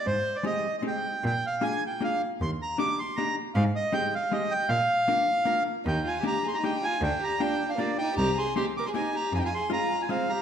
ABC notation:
X:1
M:3/4
L:1/16
Q:"Swing" 1/4=156
K:Eb
V:1 name="Accordion"
c3 d e3 e g4 | g2 f2 a2 g2 f2 z2 | c'2 b2 d'2 c'2 b2 z2 | f2 e2 g2 f2 e2 g2 |
f8- f2 z2 | g2 a2 b2 c' b g2 a2 | g2 b2 g3 f d2 g2 | b2 c'2 c'2 d' c' a2 b2 |
a/2 g/2 a c'2 b3 a f2 b2 |]
V:2 name="Violin"
z12 | z12 | z12 | z12 |
z12 | E2 F2 G2 A G E2 F2 | D2 G2 D3 D B,2 E2 | G2 A2 G2 B A E2 G2 |
F/2 E/2 F A2 F3 F C2 G2 |]
V:3 name="Hollow-body jazz guitar"
z4 [A,CEG]2 z2 [A,CEG]2 z2 | z4 [B,DFA]2 z2 [B,DFA]2 z2 | z4 [B,DEG]2 z2 [B,DEG]2 z2 | z4 [A,CEG]2 z2 [A,CEG]2 z2 |
z4 [B,DFB]2 z2 [B,DFB]2 z2 | z4 [B,DEG]2 z2 [B,DEG]2 z2 | z4 [B,DFG]2 z2 [B,DFG]2 z2 | z4 [B,CEG]2 z2 [B,CEG]2 z2 |
z4 [A,CEF]2 z2 [A,CEF]2 z2 |]
V:4 name="Cello" clef=bass
A,,12 | B,,12 | E,,12 | A,,12 |
B,,12 | E,,12 | D,,12 | C,,12 |
F,,12 |]